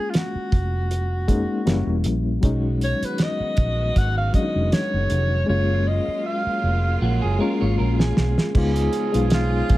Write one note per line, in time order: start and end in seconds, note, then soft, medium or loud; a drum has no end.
0.00 0.30 G#3 medium
0.00 0.31 A#3 medium
0.00 0.32 C#4 medium
0.00 0.32 F4 medium
0.00 0.11 G#4 loud
0.10 0.19 F4 medium
0.14 2.07 F#4 medium
0.14 snare medium
0.14 closed hi-hat medium
0.35 muted fingered electric bass stroke soft
0.52 1.45 F1 medium
0.52 kick medium
0.52 closed hi-hat medium
0.91 closed hi-hat medium
1.28 1.66 G#3 medium
1.28 1.66 A#3 medium
1.28 1.67 C#4 medium
1.28 1.68 D#4 medium
1.28 kick medium
1.28 closed hi-hat medium
1.66 1.84 F#1 medium
1.66 2.29 G3 medium
1.66 2.29 A#3 medium
1.66 2.30 C#4 medium
1.66 2.30 E4 medium
1.66 snare loud
1.66 closed hi-hat medium
1.87 2.05 E1 medium
2.04 2.37 A#1 medium
2.04 closed hi-hat medium
2.41 2.93 B1 loud
2.41 5.46 D#3 medium
2.41 3.36 F#3 medium
2.41 3.36 G#3 medium
2.41 8.51 G#3 medium
2.41 5.46 B3 medium
2.41 3.37 C#4 medium
2.41 3.38 D#4 medium
2.41 5.46 F#4 medium
2.41 kick medium
2.41 closed hi-hat medium
2.81 3.06 C#5 medium
2.81 closed hi-hat medium
3.02 3.24 B4 medium
3.02 muted fingered electric bass stroke medium
3.02 closed hi-hat medium
3.18 snare loud
3.18 closed hi-hat medium
3.23 3.99 D#5 medium
3.40 muted fingered electric bass stroke soft
3.57 3.90 A#1 medium
3.57 kick medium
3.57 closed hi-hat medium
3.96 4.28 G#1 loud
3.96 4.17 F#5 loud
3.96 kick medium
3.96 closed hi-hat medium
4.17 4.34 F5 loud
4.33 5.03 F#3 medium
4.33 5.04 G#3 medium
4.33 5.04 C#4 medium
4.33 4.42 D4 medium
4.33 4.74 D#5 loud
4.33 kick medium
4.33 closed hi-hat medium
4.42 5.08 D#4 medium
4.55 4.70 F1 medium
4.72 5.49 C#5 medium
4.72 snare loud
4.72 closed hi-hat medium
4.93 5.08 F#1 medium
5.10 5.43 F1 loud
5.10 closed hi-hat medium
5.46 5.99 F#1 loud
5.46 8.51 F#3 medium
5.46 6.41 G#3 medium
5.46 8.51 A#3 medium
5.46 6.42 A#3 medium
5.46 6.43 C#4 medium
5.46 8.51 F4 medium
5.46 6.43 F4 medium
5.46 5.89 C#5 medium
5.88 6.25 D#5 medium
6.08 muted fingered electric bass stroke soft
6.26 6.98 F5 medium
6.46 muted fingered electric bass stroke soft
6.63 6.96 F1 medium
7.02 7.19 A#1 medium
7.02 7.22 A#3 medium
7.02 7.22 F#4 medium
7.22 7.38 F#1 medium
7.22 7.39 G#4 medium
7.39 8.09 G#3 medium
7.39 8.10 A#3 medium
7.39 7.60 C#4 medium
7.39 8.10 C#4 medium
7.39 8.11 F4 loud
7.39 7.60 A#4 medium
7.61 7.76 G#1 medium
7.61 7.78 F4 medium
7.61 7.78 C#5 medium
7.78 8.11 A#1 medium
7.78 7.98 C#4 medium
7.78 7.98 A#4 medium
7.99 8.52 G#4 medium
7.99 snare medium
8.17 8.35 B1 medium
8.17 snare loud
8.38 snare medium
8.55 8.87 C#2 loud
8.55 9.78 C#3 medium
8.55 9.78 F3 medium
8.55 8.90 G#3 medium
8.55 9.78 G#3 medium
8.55 8.90 B3 medium
8.55 9.78 C#4 medium
8.55 8.91 D#4 medium
8.55 9.78 F4 medium
8.55 8.91 F4 medium
8.55 9.78 G#4 medium
8.55 kick medium
8.55 crash medium
8.76 closed hi-hat medium
8.93 closed hi-hat medium
9.12 9.61 B1 medium
9.12 9.78 G#3 medium
9.12 9.78 B3 medium
9.12 9.78 D#4 medium
9.12 9.78 F4 medium
9.12 closed hi-hat medium
9.30 9.78 F4 medium
9.30 snare loud
9.30 closed hi-hat medium
9.69 9.78 A#1 medium
9.69 kick loud
9.69 closed hi-hat medium